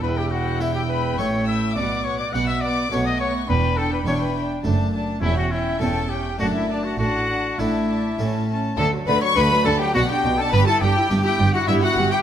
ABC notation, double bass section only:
X:1
M:3/4
L:1/8
Q:1/4=104
K:D
V:1 name="Double bass section" clef=bass
E,,,4 A,,,2 | B,,,2 B,,,2 B,,,2 | E,,,2 E,,,2 F,,,2 | E,,,2 E,,,2 F,,,2 |
A,,,2 A,,,2 A,,,2 | D,, D,, D,, D,, B,,, B,,, | G,,, G,,, G,,, G,,, G,,, G,,, |]